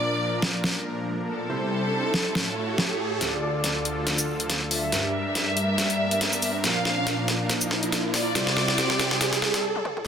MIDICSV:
0, 0, Header, 1, 5, 480
1, 0, Start_track
1, 0, Tempo, 428571
1, 1674, Time_signature, 4, 2, 24, 8
1, 11280, End_track
2, 0, Start_track
2, 0, Title_t, "Violin section"
2, 0, Program_c, 0, 48
2, 0, Note_on_c, 0, 74, 100
2, 628, Note_off_c, 0, 74, 0
2, 1434, Note_on_c, 0, 69, 96
2, 3508, Note_off_c, 0, 69, 0
2, 3595, Note_on_c, 0, 74, 99
2, 4468, Note_off_c, 0, 74, 0
2, 5275, Note_on_c, 0, 76, 103
2, 7348, Note_off_c, 0, 76, 0
2, 7435, Note_on_c, 0, 77, 105
2, 8309, Note_off_c, 0, 77, 0
2, 9113, Note_on_c, 0, 74, 105
2, 10794, Note_off_c, 0, 74, 0
2, 11280, End_track
3, 0, Start_track
3, 0, Title_t, "Supersaw synth"
3, 0, Program_c, 1, 81
3, 0, Note_on_c, 1, 46, 77
3, 0, Note_on_c, 1, 53, 73
3, 0, Note_on_c, 1, 62, 71
3, 0, Note_on_c, 1, 70, 87
3, 1636, Note_off_c, 1, 62, 0
3, 1656, Note_off_c, 1, 46, 0
3, 1656, Note_off_c, 1, 53, 0
3, 1656, Note_off_c, 1, 70, 0
3, 1675, Note_on_c, 1, 55, 69
3, 1675, Note_on_c, 1, 64, 73
3, 1675, Note_on_c, 1, 72, 82
3, 1676, Note_on_c, 1, 48, 75
3, 2625, Note_off_c, 1, 72, 0
3, 2626, Note_off_c, 1, 48, 0
3, 2626, Note_off_c, 1, 55, 0
3, 2636, Note_on_c, 1, 45, 75
3, 2636, Note_on_c, 1, 57, 68
3, 2637, Note_on_c, 1, 73, 82
3, 3576, Note_off_c, 1, 64, 0
3, 3586, Note_off_c, 1, 45, 0
3, 3586, Note_off_c, 1, 57, 0
3, 3586, Note_off_c, 1, 73, 0
3, 3595, Note_on_c, 1, 38, 79
3, 3595, Note_on_c, 1, 50, 76
3, 3596, Note_on_c, 1, 65, 72
3, 3596, Note_on_c, 1, 69, 85
3, 5496, Note_off_c, 1, 38, 0
3, 5496, Note_off_c, 1, 50, 0
3, 5496, Note_off_c, 1, 65, 0
3, 5496, Note_off_c, 1, 69, 0
3, 5516, Note_on_c, 1, 43, 80
3, 5516, Note_on_c, 1, 55, 73
3, 5516, Note_on_c, 1, 62, 71
3, 5516, Note_on_c, 1, 70, 92
3, 7416, Note_off_c, 1, 43, 0
3, 7416, Note_off_c, 1, 55, 0
3, 7434, Note_on_c, 1, 46, 81
3, 7435, Note_on_c, 1, 53, 75
3, 9317, Note_off_c, 1, 62, 0
3, 9317, Note_off_c, 1, 70, 0
3, 9335, Note_off_c, 1, 46, 0
3, 9336, Note_off_c, 1, 53, 0
3, 9354, Note_on_c, 1, 64, 74
3, 9354, Note_on_c, 1, 72, 92
3, 9355, Note_on_c, 1, 48, 81
3, 9355, Note_on_c, 1, 55, 74
3, 10780, Note_off_c, 1, 48, 0
3, 10780, Note_off_c, 1, 55, 0
3, 10780, Note_off_c, 1, 64, 0
3, 10780, Note_off_c, 1, 72, 0
3, 11280, End_track
4, 0, Start_track
4, 0, Title_t, "Riser"
4, 0, Program_c, 2, 103
4, 0, Note_on_c, 2, 60, 69
4, 3595, Note_off_c, 2, 60, 0
4, 3595, Note_on_c, 2, 60, 76
4, 10795, Note_off_c, 2, 60, 0
4, 11280, End_track
5, 0, Start_track
5, 0, Title_t, "Drums"
5, 475, Note_on_c, 9, 38, 55
5, 587, Note_off_c, 9, 38, 0
5, 715, Note_on_c, 9, 38, 106
5, 827, Note_off_c, 9, 38, 0
5, 2395, Note_on_c, 9, 38, 60
5, 2507, Note_off_c, 9, 38, 0
5, 2635, Note_on_c, 9, 38, 107
5, 2747, Note_off_c, 9, 38, 0
5, 3115, Note_on_c, 9, 38, 54
5, 3227, Note_off_c, 9, 38, 0
5, 3595, Note_on_c, 9, 38, 47
5, 3595, Note_on_c, 9, 42, 75
5, 3707, Note_off_c, 9, 38, 0
5, 3707, Note_off_c, 9, 42, 0
5, 4075, Note_on_c, 9, 38, 46
5, 4075, Note_on_c, 9, 42, 76
5, 4187, Note_off_c, 9, 38, 0
5, 4187, Note_off_c, 9, 42, 0
5, 4315, Note_on_c, 9, 42, 54
5, 4427, Note_off_c, 9, 42, 0
5, 4555, Note_on_c, 9, 38, 52
5, 4555, Note_on_c, 9, 42, 77
5, 4667, Note_off_c, 9, 38, 0
5, 4667, Note_off_c, 9, 42, 0
5, 4687, Note_on_c, 9, 42, 51
5, 4687, Note_on_c, 9, 82, 70
5, 4799, Note_off_c, 9, 42, 0
5, 4799, Note_off_c, 9, 82, 0
5, 4927, Note_on_c, 9, 42, 51
5, 5035, Note_off_c, 9, 42, 0
5, 5035, Note_on_c, 9, 38, 53
5, 5035, Note_on_c, 9, 42, 80
5, 5147, Note_off_c, 9, 38, 0
5, 5147, Note_off_c, 9, 42, 0
5, 5275, Note_on_c, 9, 46, 90
5, 5387, Note_off_c, 9, 46, 0
5, 5515, Note_on_c, 9, 38, 58
5, 5515, Note_on_c, 9, 42, 75
5, 5627, Note_off_c, 9, 38, 0
5, 5627, Note_off_c, 9, 42, 0
5, 5995, Note_on_c, 9, 38, 55
5, 5995, Note_on_c, 9, 42, 71
5, 6107, Note_off_c, 9, 38, 0
5, 6107, Note_off_c, 9, 42, 0
5, 6235, Note_on_c, 9, 42, 53
5, 6347, Note_off_c, 9, 42, 0
5, 6475, Note_on_c, 9, 38, 65
5, 6475, Note_on_c, 9, 42, 77
5, 6587, Note_off_c, 9, 38, 0
5, 6587, Note_off_c, 9, 42, 0
5, 6607, Note_on_c, 9, 42, 51
5, 6719, Note_off_c, 9, 42, 0
5, 6847, Note_on_c, 9, 42, 53
5, 6955, Note_off_c, 9, 42, 0
5, 6955, Note_on_c, 9, 38, 68
5, 6955, Note_on_c, 9, 42, 80
5, 7067, Note_off_c, 9, 38, 0
5, 7067, Note_off_c, 9, 42, 0
5, 7087, Note_on_c, 9, 82, 49
5, 7195, Note_off_c, 9, 82, 0
5, 7195, Note_on_c, 9, 46, 90
5, 7195, Note_on_c, 9, 82, 57
5, 7307, Note_off_c, 9, 46, 0
5, 7307, Note_off_c, 9, 82, 0
5, 7435, Note_on_c, 9, 38, 74
5, 7435, Note_on_c, 9, 42, 77
5, 7547, Note_off_c, 9, 38, 0
5, 7547, Note_off_c, 9, 42, 0
5, 7676, Note_on_c, 9, 38, 72
5, 7788, Note_off_c, 9, 38, 0
5, 7915, Note_on_c, 9, 38, 74
5, 7915, Note_on_c, 9, 42, 74
5, 8027, Note_off_c, 9, 38, 0
5, 8027, Note_off_c, 9, 42, 0
5, 8155, Note_on_c, 9, 38, 82
5, 8155, Note_on_c, 9, 42, 53
5, 8267, Note_off_c, 9, 38, 0
5, 8267, Note_off_c, 9, 42, 0
5, 8395, Note_on_c, 9, 38, 81
5, 8395, Note_on_c, 9, 42, 76
5, 8507, Note_off_c, 9, 38, 0
5, 8507, Note_off_c, 9, 42, 0
5, 8527, Note_on_c, 9, 42, 53
5, 8527, Note_on_c, 9, 82, 76
5, 8635, Note_on_c, 9, 38, 86
5, 8639, Note_off_c, 9, 42, 0
5, 8639, Note_off_c, 9, 82, 0
5, 8747, Note_off_c, 9, 38, 0
5, 8767, Note_on_c, 9, 42, 51
5, 8875, Note_off_c, 9, 42, 0
5, 8875, Note_on_c, 9, 38, 85
5, 8875, Note_on_c, 9, 42, 78
5, 8987, Note_off_c, 9, 38, 0
5, 8987, Note_off_c, 9, 42, 0
5, 9115, Note_on_c, 9, 38, 88
5, 9115, Note_on_c, 9, 46, 88
5, 9227, Note_off_c, 9, 38, 0
5, 9227, Note_off_c, 9, 46, 0
5, 9355, Note_on_c, 9, 38, 93
5, 9355, Note_on_c, 9, 42, 75
5, 9467, Note_off_c, 9, 38, 0
5, 9467, Note_off_c, 9, 42, 0
5, 9487, Note_on_c, 9, 38, 80
5, 9595, Note_off_c, 9, 38, 0
5, 9595, Note_on_c, 9, 38, 92
5, 9707, Note_off_c, 9, 38, 0
5, 9726, Note_on_c, 9, 38, 81
5, 9835, Note_off_c, 9, 38, 0
5, 9835, Note_on_c, 9, 38, 92
5, 9835, Note_on_c, 9, 42, 73
5, 9947, Note_off_c, 9, 38, 0
5, 9947, Note_off_c, 9, 42, 0
5, 9966, Note_on_c, 9, 38, 87
5, 10075, Note_off_c, 9, 38, 0
5, 10075, Note_on_c, 9, 38, 102
5, 10075, Note_on_c, 9, 42, 52
5, 10187, Note_off_c, 9, 38, 0
5, 10187, Note_off_c, 9, 42, 0
5, 10206, Note_on_c, 9, 38, 89
5, 10313, Note_off_c, 9, 38, 0
5, 10313, Note_on_c, 9, 38, 100
5, 10313, Note_on_c, 9, 42, 74
5, 10425, Note_off_c, 9, 38, 0
5, 10425, Note_off_c, 9, 42, 0
5, 10446, Note_on_c, 9, 38, 92
5, 10446, Note_on_c, 9, 42, 50
5, 10553, Note_off_c, 9, 38, 0
5, 10553, Note_on_c, 9, 38, 103
5, 10558, Note_off_c, 9, 42, 0
5, 10665, Note_off_c, 9, 38, 0
5, 10685, Note_on_c, 9, 38, 88
5, 10685, Note_on_c, 9, 42, 50
5, 10797, Note_off_c, 9, 38, 0
5, 10797, Note_off_c, 9, 42, 0
5, 10925, Note_on_c, 9, 48, 52
5, 11033, Note_on_c, 9, 47, 79
5, 11037, Note_off_c, 9, 48, 0
5, 11145, Note_off_c, 9, 47, 0
5, 11165, Note_on_c, 9, 45, 82
5, 11277, Note_off_c, 9, 45, 0
5, 11280, End_track
0, 0, End_of_file